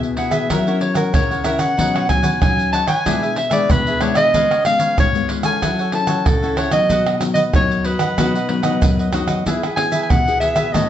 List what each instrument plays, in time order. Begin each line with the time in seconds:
Already playing: nylon-string guitar B2 B3 E4 G#4, cavaquinho G#4 B4 E5
0.03 pandeiro, shaker
0.16 nylon-string guitar B3 E4 G#4, cavaquinho E4 G#4 B4 E5, soprano saxophone F#5, pandeiro
0.31 cavaquinho G#4 B4 E5, soprano saxophone E5, pandeiro, tamborim, shaker
0.50 nylon-string guitar F#3 C#4 E4 A#4, cavaquinho E4 A#4 C#5 F#5, pandeiro, tamborim, shaker, surdo
0.67 nylon-string guitar C#4 E4 A#4, cavaquinho A#4 C#5 F#5, pandeiro, shaker
0.80 soprano saxophone C#5, muted cavaquinho stroke, pandeiro
0.94 cavaquinho A#4 C#5 F#5, soprano saxophone A#4, pandeiro, tamborim, shaker
1.14 nylon-string guitar C#3 C#4 E4 A#4, soprano saxophone C#5, pandeiro, tamborim, shaker, surdo
1.31 cavaquinho A#4 C#5 F#5, pandeiro, shaker
1.44 nylon-string guitar C#4 E4 A#4, cavaquinho E4 A#4 C#5 F#5, soprano saxophone E5, pandeiro, tamborim, shaker
1.58 cavaquinho A#4 C#5 F#5, soprano saxophone F#5, pandeiro, tamborim, shaker
1.77 nylon-string guitar B2 F#3 C#4 D#4, cavaquinho D#4 B4 C#5 F#5, pandeiro, shaker, surdo
1.94 cavaquinho B4 C#5 F#5, pandeiro, tamborim, shaker
2.09 nylon-string guitar F#3 C#4 D#4, soprano saxophone G#5, muted cavaquinho stroke, pandeiro, tamborim, shaker, surdo
2.23 cavaquinho B4 C#5 F#5, pandeiro, shaker
2.41 nylon-string guitar F#3 C#4 D#4, soprano saxophone G#5, pandeiro, tamborim, shaker, surdo
2.59 pandeiro, shaker
2.72 cavaquinho D#4 B4 C#5 F#5, soprano saxophone A5, pandeiro, shaker
2.87 cavaquinho B4 C#5 F#5, soprano saxophone G#5, pandeiro, tamborim, shaker
3.05 nylon-string guitar B2 G#3 D4 E4, cavaquinho D4 G#4 B4 E5, pandeiro, tamborim, shaker, surdo
3.22 cavaquinho G#4 B4 E5, pandeiro, shaker
3.36 soprano saxophone E5, muted cavaquinho stroke, pandeiro
3.50 nylon-string guitar G#3 D4 E4, cavaquinho G#4 B4 E5, soprano saxophone D5, pandeiro, tamborim, shaker
3.70 nylon-string guitar B2, soprano saxophone B4, pandeiro, tamborim, shaker, surdo
3.87 cavaquinho G#4 B4 E5, pandeiro, shaker
4.01 nylon-string guitar G#3 D4 E4, cavaquinho D4 G#4 B4 E5, soprano saxophone C#5, pandeiro, tamborim
4.15 cavaquinho G#4 B4 E5, soprano saxophone D#5, pandeiro, tamborim, shaker
4.34 nylon-string guitar C#3 G#3 B3 F4, cavaquinho F4 B4 C#5 F5, pandeiro, shaker, surdo
4.50 cavaquinho B4 C#5 F5, pandeiro, tamborim, shaker
4.64 nylon-string guitar G#3 B3 F4, soprano saxophone F5, muted cavaquinho stroke, pandeiro, tamborim, shaker
4.78 cavaquinho B4 C#5 F5, pandeiro, shaker
4.98 nylon-string guitar G#2, soprano saxophone C#5, pandeiro, tamborim, shaker, surdo
5.15 nylon-string guitar G#3 B3 F4, pandeiro, shaker
5.28 cavaquinho F4 B4 C#5 F5, pandeiro
5.43 nylon-string guitar C#4 E4 A4, cavaquinho B4 C#5 F5, soprano saxophone G#5, pandeiro, tamborim, shaker
5.62 nylon-string guitar F#3, cavaquinho E4 A4 C#5 F#5, pandeiro, tamborim, shaker, surdo
5.79 cavaquinho A4 C#5 F#5, pandeiro, shaker
5.92 nylon-string guitar C#4 E4 A4, soprano saxophone A5, muted cavaquinho stroke, pandeiro
6.07 cavaquinho A4 C#5 F#5, pandeiro, tamborim, shaker
6.25 nylon-string guitar C#3, soprano saxophone A4, pandeiro, tamborim, shaker, surdo
6.42 nylon-string guitar C#4 E4 A4, cavaquinho A4 C#5 F#5, pandeiro, shaker
6.56 cavaquinho E4 A4 C#5 F#5, soprano saxophone C#5, pandeiro, tamborim
6.71 nylon-string guitar F#3 B3 D#4, cavaquinho A4 C#5 F#5, soprano saxophone D#5, pandeiro, tamborim, shaker
6.90 nylon-string guitar B2, cavaquinho F#4 B4 D#5 F#5, pandeiro, shaker, surdo
7.07 cavaquinho B4 D#5 F#5, pandeiro, tamborim, shaker
7.20 nylon-string guitar F#3 B3 D#4, muted cavaquinho stroke, pandeiro, tamborim, shaker
7.34 cavaquinho B4 D#5 F#5, soprano saxophone D#5, pandeiro, shaker
7.54 nylon-string guitar F#2 F#3 B3 D#4, soprano saxophone C#5, pandeiro, tamborim, shaker, surdo
7.71 pandeiro, shaker
7.84 cavaquinho F#4 B4 D#5 F#5, soprano saxophone B4, pandeiro
7.99 cavaquinho B4 D#5 F#5, pandeiro, tamborim, shaker
8.18 nylon-string guitar B2 F#3 B3 D#4, cavaquinho F#4 B4 D#5 F#5, pandeiro, tamborim, shaker, surdo
8.35 cavaquinho B4 D#5 F#5, pandeiro, shaker
8.48 nylon-string guitar F#3 B3 D#4, muted cavaquinho stroke, pandeiro
8.63 nylon-string guitar F#3 B3 D#4, cavaquinho B4 D#5 F#5, pandeiro, tamborim, shaker
8.82 nylon-string guitar F#2, pandeiro, tamborim, shaker, surdo
8.99 cavaquinho B4 D#5 F#5, pandeiro, shaker
9.13 nylon-string guitar F#3 B3 D#4, cavaquinho F#4 B4 D#5 F#5, pandeiro, tamborim, shaker
9.27 cavaquinho B4 D#5 F#5, pandeiro, tamborim, shaker
9.46 nylon-string guitar E3 B3 E4 G#4, cavaquinho E4 G#4 B4 E5, pandeiro, shaker, surdo
9.63 cavaquinho G#4 B4 E5, pandeiro, tamborim, shaker
9.76 nylon-string guitar B3 E4 G#4, soprano saxophone G#5, muted cavaquinho stroke, pandeiro, tamborim
9.92 cavaquinho G#4 B4 E5, pandeiro, shaker
10.03 soprano saxophone G#5
10.10 nylon-string guitar B2, soprano saxophone F#5, pandeiro, tamborim, shaker, surdo
10.27 nylon-string guitar B3 E4 G#4, pandeiro, shaker
10.40 cavaquinho E4 G#4 B4 E5, soprano saxophone E5, pandeiro
10.56 cavaquinho G#4 B4 E5, pandeiro, tamborim, shaker
10.72 nylon-string guitar A2 E3 B3 C#4, cavaquinho A4 B4 C#5 A5, soprano saxophone D#5, pandeiro, tamborim, shaker, surdo